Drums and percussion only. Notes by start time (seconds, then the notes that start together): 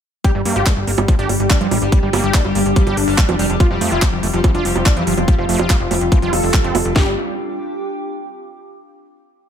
0.24 kick, closed hi-hat
0.45 open hi-hat
0.56 closed hi-hat, high bongo
0.66 kick, clap, closed hi-hat
0.87 open hi-hat
0.98 closed hi-hat, high bongo
1.08 kick, closed hi-hat
1.19 closed hi-hat
1.29 open hi-hat, high bongo
1.40 closed hi-hat
1.50 kick, clap, closed hi-hat
1.61 closed hi-hat
1.71 open hi-hat, high bongo
1.82 closed hi-hat
1.92 kick, closed hi-hat
2.13 open hi-hat, high bongo
2.24 closed hi-hat
2.34 kick, clap, closed hi-hat
2.45 high bongo
2.55 open hi-hat
2.66 closed hi-hat
2.76 kick, closed hi-hat
2.87 closed hi-hat, high bongo
2.97 open hi-hat
3.08 open hi-hat
3.18 kick, clap, closed hi-hat
3.29 closed hi-hat, high bongo
3.39 open hi-hat
3.50 closed hi-hat
3.60 kick, closed hi-hat, high bongo
3.81 open hi-hat
3.92 closed hi-hat
4.02 kick, clap, closed hi-hat, high bongo
4.23 open hi-hat
4.34 closed hi-hat
4.44 kick, closed hi-hat, high bongo
4.55 closed hi-hat
4.65 open hi-hat
4.76 closed hi-hat, high bongo
4.86 kick, clap, closed hi-hat
4.97 closed hi-hat
5.07 open hi-hat
5.17 closed hi-hat, high bongo
5.28 kick, closed hi-hat
5.49 open hi-hat
5.59 closed hi-hat, high bongo
5.70 kick, clap, closed hi-hat
5.91 open hi-hat, high bongo
6.01 closed hi-hat
6.12 kick, closed hi-hat
6.22 closed hi-hat
6.33 open hi-hat, high bongo
6.43 open hi-hat
6.54 kick, clap, closed hi-hat
6.64 closed hi-hat
6.75 open hi-hat, high bongo
6.85 closed hi-hat
6.96 kick, snare